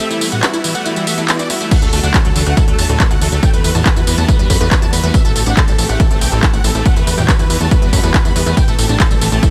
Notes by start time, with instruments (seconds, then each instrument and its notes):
0.00 acid bass A3
0.10 supersaw synth E3 G3 B3 E4 F#4, acid bass A3, closed hi-hat, tambourine
0.21 supersaw synth E3 G3 B3 E4 F#4, acid bass A3, open hi-hat, ride, tambourine
0.32 acid bass A2, supersaw synth F#5, closed hi-hat, tambourine
0.43 supersaw synth E3 G3 B3 E4 F#4, acid bass A3, clap, closed hi-hat, ride, tambourine
0.53 supersaw synth E3 G3 B3 E4 F#4, acid bass E4, closed hi-hat, tambourine
0.64 acid bass E3, supersaw synth E4, open hi-hat, ride, tambourine
0.75 supersaw synth E3 G3 B3 F#4 F#5, acid bass A3, closed hi-hat, tambourine
0.85 acid bass A3, supersaw synth E4, closed hi-hat, ride, tambourine
0.96 supersaw synth E3 G3 B3 E4 F#4, acid bass G3, closed hi-hat, tambourine
1.07 supersaw synth E3 G3 B3 F#4 E5, acid bass A3, open hi-hat, ride, tambourine
1.18 acid bass A3, supersaw synth E4, closed hi-hat, tambourine
1.28 supersaw synth E3 G3 B3 E4 F#4, acid bass A3, clap, closed hi-hat, ride, tambourine
1.39 supersaw synth E3 G3 B3 F#4 D5, acid bass E4, closed hi-hat, tambourine
1.50 acid bass A3, supersaw synth E4, open hi-hat, ride, tambourine
1.61 supersaw synth E3 G3 B3 E4 F#4, acid bass A3, closed hi-hat, tambourine
1.71 acid bass A3, supersaw synth F#5, kick, closed hi-hat, crash, ride, tambourine
1.82 analog synth bass D2, supersaw synth D3 F#3 A3 F#4 A4, acid bass A3, closed hi-hat, tambourine
1.93 analog synth bass D2, supersaw synth D3 F#3 A3 F#4 A4, acid bass A3, open hi-hat, ride, tambourine
2.03 analog synth bass D2, acid bass D4, supersaw synth F#5, closed hi-hat, tambourine
2.14 supersaw synth D3 F#3 A3 F#4 A4, acid bass A3, kick, clap, closed hi-hat, ride, tambourine
2.25 analog synth bass D2, supersaw synth D3 F#3 A3 F#4 A4, acid bass F#3, closed hi-hat, tambourine
2.36 analog synth bass D2, acid bass E3, supersaw synth A4, open hi-hat, ride, tambourine
2.46 analog synth bass D2, supersaw synth D3 F#3 A3 F#4 F#5, acid bass A3, closed hi-hat, tambourine
2.57 acid bass E4, supersaw synth A4, kick, closed hi-hat, ride, tambourine
2.68 analog synth bass D2, supersaw synth D3 F#3 A3 F#4 A4, acid bass A3, closed hi-hat
2.78 analog synth bass E2, supersaw synth D3 F#3 A3 F#4 A5, acid bass A3, open hi-hat, ride, tambourine
2.89 analog synth bass D2, acid bass A2, supersaw synth A4, closed hi-hat, tambourine
3.00 supersaw synth D3 F#3 A3 F#4, kick, clap, closed hi-hat, ride, tambourine
3.11 analog synth bass D2, supersaw synth D3 F#3 A3 F#4 F#5, acid bass A3, closed hi-hat, tambourine
3.21 analog synth bass D2, acid bass E3, supersaw synth A4, open hi-hat, ride, tambourine
3.32 analog synth bass D2, supersaw synth D3 F#3 A3 F#4 A4, acid bass A3, closed hi-hat, tambourine
3.43 acid bass A3, supersaw synth G5, kick, closed hi-hat, ride, tambourine
3.53 analog synth bass E2, supersaw synth E3 G3 B3 F#4 B4, acid bass A3, closed hi-hat, tambourine
3.64 analog synth bass E2, supersaw synth E3 G3 B3 F#4 B4, acid bass A3, open hi-hat, ride, tambourine
3.75 analog synth bass E2, acid bass A2, supersaw synth A5, closed hi-hat, tambourine
3.86 supersaw synth E3 G3 B3 F#4 B4, kick, clap, closed hi-hat, ride, tambourine
3.96 analog synth bass E2, supersaw synth E3 G3 B3 F#4 B4, acid bass E4, closed hi-hat, tambourine
4.07 analog synth bass E2, acid bass E3, supersaw synth B4, open hi-hat, ride, tambourine
4.18 analog synth bass E2, supersaw synth E3 G3 B3 F#4 A5, acid bass A3, closed hi-hat, tambourine
4.28 acid bass A3, supersaw synth B4, kick, closed hi-hat, ride, tambourine
4.39 analog synth bass E2, supersaw synth E3 G3 B3 F#4 B4, acid bass G3, closed hi-hat
4.50 analog synth bass F#2, supersaw synth E3 G3 B3 F#4 B5, acid bass A3, kick, open hi-hat, ride, tambourine
4.60 analog synth bass E2, acid bass A3, supersaw synth B4, closed hi-hat, tambourine
4.71 supersaw synth E3 G3 B3 F#4 B4, kick, clap, closed hi-hat, ride, tambourine
4.82 analog synth bass E2, supersaw synth E3 G3 B3 F#4 A5, acid bass E4, closed hi-hat, tambourine
4.93 analog synth bass E2, acid bass A3, supersaw synth B4, open hi-hat, ride, tambourine
5.03 analog synth bass E2, supersaw synth E3 G3 B3 F#4 B4, acid bass A3, closed hi-hat, tambourine
5.14 supersaw synth E5, kick, closed hi-hat, ride, tambourine
5.25 analog synth bass A1, supersaw synth E3 A3 C4 G4 A4, acid bass A3, closed hi-hat, tambourine
5.36 analog synth bass A1, supersaw synth E3 A3 C4 G4 A4, acid bass A3, open hi-hat, ride, tambourine
5.46 analog synth bass A1, acid bass D4, supersaw synth F#5, closed hi-hat, tambourine
5.57 supersaw synth E3 A3 C4 G4 A4, acid bass A3, kick, clap, closed hi-hat, ride, tambourine
5.68 analog synth bass A1, supersaw synth E3 A3 C4 G4 A4, acid bass G3, closed hi-hat, tambourine
5.78 analog synth bass A1, acid bass E3, supersaw synth A4, open hi-hat, ride, tambourine
5.89 analog synth bass A1, supersaw synth E3 A3 C4 G4 F#5, acid bass A3, closed hi-hat, tambourine
6.00 acid bass E4, supersaw synth A4, kick, closed hi-hat, ride, tambourine
6.11 analog synth bass A1, supersaw synth E3 A3 C4 G4 A4, acid bass A3, closed hi-hat
6.21 analog synth bass B1, supersaw synth E3 A3 C4 G4 G5, acid bass A3, open hi-hat, ride, tambourine
6.32 analog synth bass A1, acid bass A2, supersaw synth A4, closed hi-hat, tambourine
6.43 supersaw synth E3 A3 C4 G4 A4, kick, clap, closed hi-hat, ride, tambourine
6.53 analog synth bass A1, supersaw synth E3 A3 C4 G4 F#5, acid bass A3, closed hi-hat, tambourine
6.64 analog synth bass A1, acid bass E3, supersaw synth A4, open hi-hat, ride, tambourine
6.75 analog synth bass A1, supersaw synth E3 A3 C4 G4 A4, acid bass A3, closed hi-hat, tambourine
6.85 acid bass A3, supersaw synth F#5, kick, closed hi-hat, ride, tambourine
6.96 analog synth bass E2, supersaw synth E3 G3 B3 F#4 B4, acid bass A3, closed hi-hat, tambourine
7.07 analog synth bass E2, supersaw synth E3 G3 B3 F#4 B4, acid bass A3, open hi-hat, ride, tambourine
7.18 analog synth bass E2, acid bass A2, supersaw synth G5, closed hi-hat, tambourine
7.28 supersaw synth E3 G3 B3 F#4 B4, acid bass A3, kick, clap, closed hi-hat, ride, tambourine
7.39 analog synth bass E2, supersaw synth E3 G3 B3 F#4 B4, acid bass E4, closed hi-hat, tambourine
7.50 analog synth bass E2, acid bass E3, supersaw synth B4, open hi-hat, ride, tambourine
7.60 analog synth bass E2, supersaw synth E3 G3 B3 F#4 A5, acid bass A3, closed hi-hat, tambourine
7.71 acid bass A3, supersaw synth B4, kick, closed hi-hat, ride, tambourine
7.82 analog synth bass E2, supersaw synth E3 G3 B3 F#4 B4, acid bass G3, closed hi-hat
7.93 analog synth bass F#2, supersaw synth E3 G3 B3 F#4 B5, acid bass A3, kick, open hi-hat, ride, tambourine
8.03 analog synth bass E2, acid bass A3, supersaw synth B4, closed hi-hat, tambourine
8.14 supersaw synth E3 G3 B3 F#4 B4, acid bass A3, kick, clap, closed hi-hat, ride, tambourine
8.25 analog synth bass E2, supersaw synth E3 G3 B3 F#4 B5, acid bass E4, closed hi-hat, tambourine
8.36 analog synth bass E2, acid bass A3, supersaw synth B4, open hi-hat, ride, tambourine
8.46 analog synth bass E2, supersaw synth E3 G3 B3 F#4 B4, acid bass A3, closed hi-hat, tambourine
8.57 supersaw synth G5, kick, closed hi-hat, ride, tambourine
8.68 analog synth bass A1, supersaw synth E3 A3 C4 G4 A4, acid bass A3, closed hi-hat, tambourine
8.79 analog synth bass A1, supersaw synth E3 A3 C4 G4 A4, acid bass A3, open hi-hat, ride, tambourine
8.89 analog synth bass A1, acid bass D4, supersaw synth A5, closed hi-hat, tambourine
9.00 supersaw synth E3 A3 C4 G4 A4, kick, clap, closed hi-hat, ride, tambourine
9.11 analog synth bass A1, supersaw synth E3 A3 C4 G4 A4, acid bass G3, closed hi-hat, tambourine
9.21 analog synth bass A1, acid bass E3, supersaw synth A4, open hi-hat, ride, tambourine
9.32 analog synth bass A1, supersaw synth E3 A3 C4 G4 A5, acid bass A3, closed hi-hat, tambourine
9.43 acid bass E4, supersaw synth A4, kick, closed hi-hat, ride, tambourine